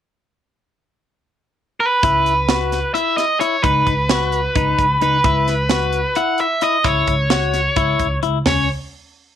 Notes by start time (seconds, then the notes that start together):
1.80 B4
2.03 C#2 E4, kick, closed hi-hat
2.26 closed hi-hat
2.49 F#4, snare, closed hi-hat
2.72 snare, closed hi-hat
2.94 E4 E5, closed hi-hat
3.17 D#5, snare, closed hi-hat
3.40 E4 C#5, closed hi-hat
3.62 C#2 D#4 B4, kick, closed hi-hat
3.87 C#2, kick, closed hi-hat
4.09 F#4, snare, closed hi-hat
4.32 closed hi-hat
4.55 C#2 D#4, kick, closed hi-hat
4.78 C#2, kick, closed hi-hat
5.01 C#2 D#4 B4, closed hi-hat
5.24 C#2 E4, kick, closed hi-hat
5.48 snare, closed hi-hat
5.69 F#4, snare, closed hi-hat
5.92 closed hi-hat
6.15 E4 F#5, closed hi-hat
6.38 E5, closed hi-hat
6.61 E4 D#5, closed hi-hat
6.84 C#2 E4 C#5, kick, closed hi-hat
7.07 C#2, kick, closed hi-hat
7.30 F#4, snare, closed hi-hat
7.54 snare, closed hi-hat
7.76 C#2 E4, kick, closed hi-hat
7.99 C#2, kick, closed hi-hat
8.23 C#2 E4, closed hi-hat
8.46 C#2 C#4 C#5, snare, floor tom, open hi-hat